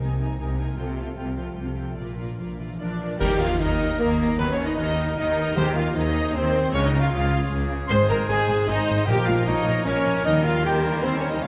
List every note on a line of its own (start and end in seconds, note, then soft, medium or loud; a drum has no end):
0.00 0.34 C2 medium
0.00 0.15 C3 soft
0.00 0.34 C3 soft
0.00 0.76 C3 soft
0.00 0.37 G#3 soft
0.00 0.57 A#3 soft
0.00 2.00 C4 soft
0.00 0.18 D#4 soft
0.00 0.19 A#4 soft
0.00 1.81 C5 soft
0.00 0.20 G#5 soft
0.20 0.53 G3 soft
0.20 0.38 D#4 soft
0.20 0.38 A#4 soft
0.20 0.39 G#5 soft
0.38 0.73 C2 medium
0.38 0.73 C3 medium
0.38 0.79 G#3 soft
0.38 0.58 D#4 soft
0.38 0.58 A#4 medium
0.38 0.58 G#5 soft
0.58 0.79 A#3 soft
0.58 0.78 D#4 soft
0.58 0.79 A#4 medium
0.58 0.78 G#5 soft
0.77 1.13 C2 medium
0.77 1.12 C3 medium
0.77 1.99 C3 medium
0.77 0.96 F4 soft
0.77 0.97 A4 medium
0.77 0.96 G5 medium
0.97 1.76 A3 soft
0.97 1.16 F4 soft
0.97 1.17 A4 soft
0.97 1.16 G5 soft
1.16 1.52 C2 medium
1.16 1.52 C3 medium
1.16 1.55 G3 soft
1.16 1.35 F4 soft
1.16 1.37 A4 soft
1.16 1.36 G5 soft
1.36 1.71 F3 soft
1.36 1.56 F4 soft
1.36 1.57 A4 soft
1.36 1.55 G5 soft
1.56 1.93 C2 medium
1.56 1.93 C3 medium
1.56 1.99 G3 soft
1.56 1.75 F4 soft
1.56 1.78 A4 soft
1.56 1.75 G5 soft
1.76 2.00 A3 soft
1.76 1.96 F4 soft
1.76 1.99 A4 soft
1.76 1.97 G5 soft
1.97 2.34 A#1 soft
1.97 2.34 A#2 soft
1.97 3.22 A#2 soft
1.97 2.18 F4 soft
1.97 2.18 A#4 soft
1.97 2.16 D5 soft
2.17 3.00 D4 soft
2.17 2.38 F4 soft
2.17 2.39 A#4 soft
2.17 2.38 D5 soft
2.38 2.75 A#1 soft
2.38 2.75 A#2 soft
2.38 2.79 F3 soft
2.38 2.57 F4 soft
2.38 2.59 A#4 soft
2.38 2.58 D5 soft
2.59 2.94 E3 soft
2.59 2.78 F4 soft
2.59 2.80 A#4 soft
2.59 2.78 D5 soft
2.79 3.16 A#1 medium
2.79 3.15 A#2 medium
2.79 3.22 F3 soft
2.79 3.17 D4 medium
2.79 3.18 D4 medium
2.79 2.98 F4 soft
2.79 2.99 A#4 soft
2.79 2.98 D5 medium
2.79 3.23 D5 medium
2.79 3.18 D5 medium
2.99 3.22 D4 soft
2.99 3.20 F4 medium
2.99 3.20 A#4 medium
2.99 3.20 D5 medium
3.18 3.56 D#2 medium
3.18 3.33 D#3 medium
3.18 4.38 D#3 medium
3.18 3.76 D#3 loud
3.18 3.56 D#3 loud
3.18 3.33 G3 medium
3.18 3.40 G4 loud
3.18 3.29 G4 loud
3.18 3.34 A#4 medium
3.18 3.40 G5 loud
3.18 3.42 G5 loud
3.18 3.41 G5 loud
3.18 concert bass drum medium
3.18 crash medium
3.31 4.41 A#3 medium
3.39 4.28 D#4 medium
3.39 3.60 F4 loud
3.39 3.60 F5 medium
3.39 3.64 F5 medium
3.39 3.61 F5 loud
3.50 4.41 G4 medium
3.59 3.95 D#2 medium
3.59 3.95 D#3 medium
3.59 4.00 D#4 loud
3.59 3.99 D#4 loud
3.59 4.18 A#4 medium
3.59 3.97 A#4 medium
3.59 3.98 D#5 loud
3.59 3.99 D#5 medium
3.59 4.02 D#5 loud
3.70 4.08 D#5 medium
3.80 3.98 G5 medium
3.90 4.41 A#5 medium
3.99 4.35 D#2 medium
3.99 4.35 D#3 medium
3.99 4.38 A#3 loud
3.99 4.39 A#3 medium
3.99 4.39 A#4 medium
3.99 4.38 A#4 medium
3.99 4.39 A#4 medium
3.99 4.39 D#5 loud
3.99 4.41 G5 medium
4.19 4.41 A#4 medium
4.30 4.57 D#4 medium
4.38 4.73 D#2 medium
4.38 4.52 D#3 medium
4.38 4.74 D#3 loud
4.38 5.56 D#3 medium
4.38 4.52 F#3 medium
4.38 4.52 B3 loud
4.38 4.51 B4 medium
4.38 4.53 B4 medium
4.38 4.81 B4 medium
4.38 4.52 B4 medium
4.38 4.45 B4 loud
4.49 5.58 B3 medium
4.49 4.65 C#4 loud
4.49 4.65 C#4 medium
4.49 4.65 C#5 loud
4.53 4.59 C#5 loud
4.53 4.58 C#5 medium
4.59 5.45 D#4 medium
4.65 4.77 D#4 loud
4.65 4.76 D#4 loud
4.65 5.59 F#4 medium
4.65 4.71 D#5 medium
4.65 4.77 D#5 medium
4.77 5.13 D#2 medium
4.77 5.13 D#3 medium
4.77 5.15 D#4 loud
4.77 5.17 D#4 loud
4.77 5.96 A#4 loud
4.77 5.17 D#5 loud
4.77 5.17 D#5 medium
4.98 5.16 F#5 medium
5.16 5.53 D#2 medium
5.16 5.52 D#3 medium
5.16 5.56 D#4 loud
5.16 5.56 D#5 loud
5.16 5.59 D#5 medium
5.16 5.58 F#5 medium
5.37 5.58 B4 medium
5.47 5.65 D#4 medium
5.55 5.92 D#2 medium
5.55 5.70 D#3 medium
5.55 6.75 D#3 medium
5.55 5.91 D#3 loud
5.55 6.12 D#3 loud
5.55 5.70 G#3 medium
5.55 5.75 G4 loud
5.55 5.76 G4 loud
5.55 5.70 C5 medium
5.55 5.76 G5 loud
5.55 5.75 G5 loud
5.55 5.77 G5 loud
5.66 6.75 D#4 medium
5.75 6.62 C4 medium
5.75 5.96 F4 loud
5.75 5.95 F5 medium
5.75 5.85 F5 medium
5.75 5.96 F5 loud
5.85 6.04 G#4 medium
5.94 6.30 D#2 loud
5.94 6.30 D#3 medium
5.94 6.34 D#4 loud
5.94 6.35 D#4 loud
5.94 6.34 G#4 medium
5.94 6.44 C5 medium
5.94 6.34 D#5 loud
5.94 6.35 D#5 medium
6.05 6.53 G#4 medium
6.16 6.33 G#5 medium
6.25 6.75 C6 medium
6.33 6.69 D#2 loud
6.33 6.69 D#3 medium
6.33 6.74 C4 loud
6.33 6.73 C5 loud
6.33 6.74 C5 medium
6.33 7.31 G#5 medium
6.45 6.75 C5 medium
6.54 7.01 G#4 medium
6.64 6.75 C4 medium
6.73 7.08 C#2 loud
6.73 6.87 C#3 medium
6.73 7.92 C#3 loud
6.73 7.08 C#3 loud
6.73 6.87 G#3 medium
6.73 6.87 C#4 loud
6.73 7.14 A#4 medium
6.73 6.86 C#5 loud
6.73 6.88 C#5 loud
6.73 6.87 C#5 loud
6.84 9.09 G#3 medium
6.84 6.99 D#4 loud
6.84 7.00 D#4 loud
6.84 6.98 D#5 loud
6.84 6.91 D#5 loud
6.84 7.01 D#5 loud
6.94 7.80 F4 medium
6.99 7.12 F4 loud
6.99 7.06 F4 loud
6.99 8.19 G#4 medium
6.99 7.11 F5 loud
6.99 7.10 F5 loud
6.99 7.11 F5 loud
7.11 7.47 C#2 loud
7.11 7.47 C#3 medium
7.11 7.51 F4 loud
7.11 7.90 G#4 loud
7.11 7.69 C#5 medium
7.11 7.50 F5 loud
7.11 7.50 F5 medium
7.22 7.60 F5 medium
7.32 7.50 G#5 medium
7.42 7.92 C#6 medium
7.51 7.85 C#2 loud
7.51 7.86 C#3 medium
7.51 8.46 G#5 medium
7.61 7.92 F5 medium
7.71 7.92 C#5 medium
7.81 7.92 F4 medium
7.88 7.98 G#1 loud
7.88 7.98 G#2 loud
7.88 9.09 G#2 loud
7.88 8.26 D#3 medium
7.88 8.26 G#3 medium
7.88 8.71 G#4 loud
7.88 8.26 C5 loud
7.88 7.98 C5 loud
7.88 8.08 C5 loud
7.88 8.07 C6 loud
7.88 8.08 C6 loud
7.88 7.98 C6 loud
8.00 9.09 D#3 medium
8.09 8.18 G#1 loud
8.09 8.17 G#2 loud
8.09 8.28 A#4 loud
8.09 8.17 A#4 loud
8.09 8.17 A#5 loud
8.09 8.28 A#5 loud
8.09 8.18 A#5 loud
8.20 9.10 G#4 medium
8.28 8.37 G#1 loud
8.28 8.37 G#2 medium
8.28 8.66 D#3 medium
8.28 8.67 G#3 medium
8.28 8.67 G#4 loud
8.28 8.67 C5 medium
8.28 8.86 C5 medium
8.28 8.67 G#5 loud
8.28 8.66 G#5 loud
8.28 8.68 G#5 loud
8.39 8.77 D#5 medium
8.48 8.56 G#1 medium
8.48 8.56 G#2 medium
8.48 8.67 G#5 medium
8.58 9.09 C6 medium
8.67 8.76 G#1 loud
8.67 8.76 G#2 loud
8.67 9.07 D#3 medium
8.67 9.07 G#3 medium
8.67 9.07 D#4 loud
8.67 9.08 D#4 loud
8.67 9.09 C5 medium
8.67 9.12 C5 loud
8.67 9.08 D#5 loud
8.67 9.10 G#5 medium
8.78 9.09 D#5 medium
8.87 8.96 G#1 medium
8.87 8.96 G#2 medium
8.87 9.09 C5 medium
8.98 9.10 D#4 medium
9.06 9.16 A#1 loud
9.06 10.27 A#2 loud
9.06 9.62 A#2 loud
9.06 9.16 A#2 loud
9.06 9.85 F3 loud
9.06 9.85 A#3 loud
9.06 9.27 G4 loud
9.06 9.85 A#4 loud
9.06 9.24 G5 loud
9.06 9.27 G5 loud
9.06 9.28 G5 loud
9.10 9.50 A#4 loud
9.17 10.27 F3 medium
9.25 9.36 A#1 medium
9.25 9.35 A#2 loud
9.25 10.14 A#3 medium
9.25 9.46 F4 loud
9.25 9.34 F5 loud
9.25 9.46 F5 loud
9.37 9.55 F4 medium
9.45 9.56 A#1 loud
9.45 9.55 A#2 loud
9.45 9.84 D#4 loud
9.45 9.85 D#4 loud
9.45 9.94 A#4 medium
9.45 9.89 C#5 loud
9.45 9.84 D#5 loud
9.45 9.85 D#5 loud
9.45 9.86 D#5 loud
9.57 10.05 F4 medium
9.65 9.74 A#1 medium
9.65 9.73 A#2 medium
9.65 9.84 F5 medium
9.76 10.94 A#5 medium
9.84 9.95 A#1 medium
9.84 9.93 A#2 medium
9.84 10.25 F3 medium
9.84 10.24 A#3 medium
9.84 10.24 C#4 loud
9.84 10.25 C#4 loud
9.84 10.25 A#4 medium
9.84 10.38 A#4 loud
9.84 10.28 C#5 loud
9.84 10.26 C#5 loud
9.84 10.25 C#5 loud
9.84 10.27 F5 medium
9.95 10.64 A#4 medium
10.06 10.14 A#1 medium
10.06 10.14 A#2 medium
10.06 10.27 F4 medium
10.15 11.46 A#3 medium
10.24 11.41 D#2 loud
10.24 11.40 D#3 loud
10.24 11.46 D#3 medium
10.24 10.63 G3 loud
10.24 10.62 A#3 medium
10.24 10.44 D#4 loud
10.24 10.45 D#4 loud
10.24 10.62 A#4 medium
10.24 10.33 D#5 loud
10.24 10.45 D#5 loud
10.24 10.46 D#5 loud
10.36 11.46 D#4 medium
10.44 11.33 G3 medium
10.44 10.64 F4 loud
10.44 10.65 F4 loud
10.44 10.64 F5 loud
10.44 10.64 F5 medium
10.44 10.55 F5 loud
10.55 10.74 G4 medium
10.64 11.43 G3 medium
10.64 11.43 A#3 medium
10.64 10.85 G4 loud
10.64 10.84 G4 loud
10.64 11.05 A#4 medium
10.64 11.24 A#4 medium
10.64 11.02 C5 loud
10.64 10.72 G5 loud
10.64 10.84 G5 medium
10.64 10.75 G5 loud
10.84 11.04 A#3 loud
10.84 11.05 A#3 medium
10.84 11.04 A#4 loud
10.84 10.94 A#4 loud
10.84 11.03 G5 medium
10.95 11.46 A#5 medium
11.03 11.17 C4 loud
11.03 11.43 A#4 medium
11.03 11.17 C5 loud
11.03 11.44 C5 medium
11.03 11.18 C5 loud
11.03 11.46 G5 medium
11.15 11.30 C#4 loud
11.15 11.31 C#4 medium
11.15 11.46 G4 medium
11.15 11.30 C#5 medium
11.15 11.31 C#5 medium
11.25 11.46 A#4 medium
11.30 11.44 D#4 loud
11.30 11.44 D#4 medium
11.30 11.44 D#5 medium
11.30 11.47 D#5 loud
11.34 11.46 G3 medium
11.42 11.47 C#3 medium
11.42 11.47 F4 loud
11.42 11.47 F4 medium
11.42 11.47 C#5 medium
11.42 11.47 F5 loud